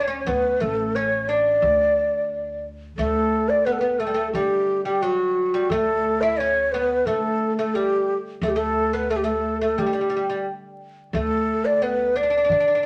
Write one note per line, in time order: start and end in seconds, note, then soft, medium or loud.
0.00 0.23 D2 medium
0.00 0.07 D4 medium
0.00 0.20 C#5 medium
0.08 0.28 C#4 medium
0.20 0.30 C#5 medium
0.26 0.59 D2 loud
0.26 0.60 B3 medium
0.26 0.63 B4 medium
0.60 1.59 A1 medium
0.60 0.96 A3 medium
0.60 0.97 A4 medium
0.95 1.28 C#4 medium
0.95 1.30 C#5 medium
1.28 2.60 D4 medium
1.28 2.64 D5 medium
1.62 2.94 D2 medium
2.97 4.30 D2 medium
2.97 3.63 A3 medium
2.97 3.51 A4 medium
3.49 3.67 D5 medium
3.65 3.79 B3 medium
3.65 3.74 B4 medium
3.72 3.80 A4 medium
3.79 3.99 B3 medium
3.79 4.01 B4 medium
3.99 4.06 A3 medium
3.99 4.32 A4 medium
4.07 4.14 G3 soft
4.14 4.34 A3 medium
4.33 5.66 D3 medium
4.33 4.84 G3 medium
4.33 4.81 G4 medium
4.85 5.03 G3 medium
4.85 5.03 G4 medium
5.02 5.55 F#3 medium
5.02 5.71 F#4 medium
5.54 5.71 G3 medium
5.70 7.02 D2 medium
5.70 6.23 A3 medium
5.70 6.23 A4 medium
6.21 6.39 E4 medium
6.21 6.40 E5 medium
6.39 6.74 C#4 medium
6.39 6.74 C#5 medium
6.72 7.07 B3 medium
6.72 7.08 B4 medium
7.06 8.38 D3 medium
7.06 7.58 A3 medium
7.06 7.57 A4 medium
7.57 7.75 A3 medium
7.57 7.76 A4 medium
7.75 8.12 G3 medium
7.75 8.15 G4 medium
8.42 9.73 D2 loud
8.42 8.55 A3 medium
8.42 8.50 A4 medium
8.48 8.58 G4 medium
8.56 8.93 A3 medium
8.56 8.95 A4 medium
8.93 9.10 B3 medium
8.93 9.12 B4 medium
9.10 9.23 A3 medium
9.10 9.18 A4 medium
9.16 9.26 G4 medium
9.24 9.60 A3 medium
9.24 9.61 A4 medium
9.61 9.78 A3 medium
9.61 9.81 A4 medium
9.78 11.09 D3 medium
9.78 9.85 G3 medium
9.78 10.46 G4 medium
9.86 9.92 G3 soft
9.93 10.00 G3 medium
10.01 10.08 G3 soft
10.10 10.15 G3 medium
10.17 10.24 G3 soft
10.30 10.45 G3 medium
11.13 12.45 D2 medium
11.13 11.81 A3 medium
11.13 11.67 A4 medium
11.65 11.84 D5 medium
11.82 12.16 B3 medium
11.82 12.18 B4 medium
12.16 12.22 D4 medium
12.16 12.86 D5 medium
12.23 12.29 D4 soft
12.30 12.36 D4 soft
12.37 12.43 D4 soft
12.45 12.50 D4 medium
12.49 12.86 D3 medium
12.49 12.59 D4 soft
12.60 12.67 D4 soft
12.68 12.74 D4 soft
12.75 12.82 D4 soft